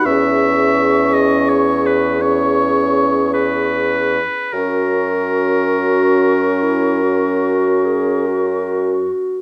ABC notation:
X:1
M:12/8
L:1/8
Q:3/8=49
K:F#mix
V:1 name="Flute"
c'6 c'4- c' z | c'8- c'3 z |]
V:2 name="Oboe"
e3 d c B c3 B3 | A8- A3 z |]
V:3 name="Clarinet"
G6 G4- G z | F3 F2 E F2 G F3 |]
V:4 name="French horn"
C6 C4- C z | C8- C3 z |]
V:5 name="Bassoon" clef=bass
E,,8- E,,3 z | F,,8- F,,3 z |]